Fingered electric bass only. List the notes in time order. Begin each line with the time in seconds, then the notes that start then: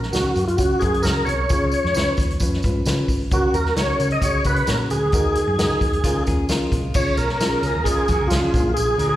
0.13 C#2
0.36 F#2
0.58 C#2
0.82 F#2
1.04 C#2
1.26 C2
1.50 C#2
1.84 F2
1.95 C#2
2.17 D#2
2.41 F2
2.64 G#2
2.86 C#3
3.08 G#1
3.31 C#2
3.54 D#2
3.77 C#2
4.00 C#3
4.22 C#2
4.45 C#3
4.69 A#2
4.91 D2
5.13 D#2
5.47 F#2
5.58 C#2
5.81 D#2
6.04 C#2
6.28 D#2
6.51 C#2
6.71 B1
6.84 C2
6.95 C#2
7.17 B1
7.62 C#2
7.75 D#2
8.09 F2
8.21 C#2
8.31 C#2
8.54 A#1
8.77 A#1
8.98 D2